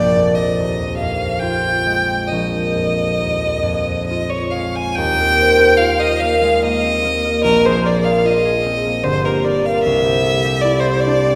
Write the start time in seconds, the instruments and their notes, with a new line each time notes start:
Already playing: harp A#1 A#3 D4, violin D5
0.17 harp F2
0.35 violin D#5
0.59 harp D#2
0.97 harp F2, violin F5
1.40 harp F4, violin G5
1.86 harp G#3
2.27 violin D#5
2.32 harp A#1
2.75 harp F2
3.20 harp D#2
3.63 harp F2
4.07 violin D#5
4.11 harp F4
4.30 violin C#5
4.51 violin F5
4.55 harp G#3
4.75 violin G#5
4.95 harp D#2, violin G5
5.20 harp A#4
5.40 harp C5
5.58 harp A#4
5.77 harp F4, violin F5
6.00 harp A#4, violin D#5
6.20 harp A#3, violin F5
6.42 harp G#3
6.62 harp A#3, violin D#5
6.84 harp C4
7.05 harp A#3
7.25 harp A#4
7.44 harp A#1, violin A#4
7.64 harp G#4, violin C5
7.85 harp A#4, violin D5
8.04 harp G#4, violin F5
8.25 harp F4, violin D#5
8.45 harp G#4
8.66 harp C4
8.86 harp A#3
9.03 harp G1, violin C5
9.25 harp G4, violin A#4
9.45 harp A#4, violin D5
9.65 harp G4, violin F5
9.83 harp C2, violin E5
10.05 harp G4
10.24 harp A4
10.45 harp G4
10.61 harp E4, violin D5
10.80 violin C5
10.85 harp G4
11.00 violin D5
11.06 harp D4
11.26 harp C4